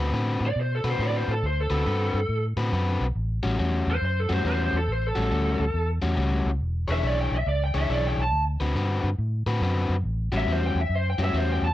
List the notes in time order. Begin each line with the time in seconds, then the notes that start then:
Already playing: D2
0.00 D3 C4 F#4 B4
0.12 A2 D3 C4 F#4 B4
0.40 A2
0.47 D5
0.56 B2
0.61 C5
0.75 A4
0.84 B2 D3 C4 F#4 B4
0.90 C5
0.99 A2 D3 C4 F#4 B4
1.03 D5
1.18 C5
1.28 A2 A4
1.42 D2 C5
1.60 A4
1.70 D2 D3 C4 F#4 B4
1.85 G2 D3 C4 F#4 B4
2.14 G2
2.29 A2
2.57 A2 D3 C4 F#4 B4
2.72 F#2 D3 C4 F#4 B4
3.00 B1
3.15 A1
3.43 A1 A2 G3 C#4 F#4
3.58 E2 A2 G3 C#4 F#4
3.87 E2
3.91 C5
4.02 F#2 C5
4.20 A4
4.29 F#2 A2 G3 C#4 F#4
4.34 C5
4.44 E2 A2 G3 C#4 F#4
4.48 C5
4.63 C5
4.73 E2
4.77 A4
4.88 A1
4.92 C5
5.07 A4
5.15 A1 A2 G3 C#4 F#4
5.31 D2 A2 G3 C#4 F#4
5.59 D2
5.74 E2
6.02 E2 A2 G3 C#4 F#4
6.17 C#2 A2 G3 C#4 F#4
6.45 C#2
6.61 E1
6.88 E1 E3 D4 G#4 C#5 E5
7.03 B1 E3 D4 G#4 C#5
7.07 D5
7.21 G5
7.31 B1 E5
7.46 C#2 D5
7.64 G5
7.74 C#2 E3 D4 G#4 C#5 E5
7.89 B1 E3 D4 G#4 C#5 D5
8.07 G5
8.17 B1
8.22 A5
8.32 D2
8.60 D2 D3 C4 F#4 B4
8.75 G2 D3 C4 F#4 B4
9.04 G2
9.18 A2
9.46 A2 D3 C4 F#4 B4
9.61 F#2 D3 C4 F#4 B4
9.89 F#2
10.04 A1
10.32 A1 A2 G3 C#4 F#4
10.37 E5
10.47 E2 A2 G3 C#4 F#4
10.52 C5
10.66 G5
10.75 E2
10.81 E5
10.89 F#2
10.95 C5
11.10 G5
11.18 F#2 A2 G3 C#4 F#4
11.24 E5
11.33 E2 A2 G3 C#4 F#4
11.38 C5
11.52 G5
11.62 E2 A5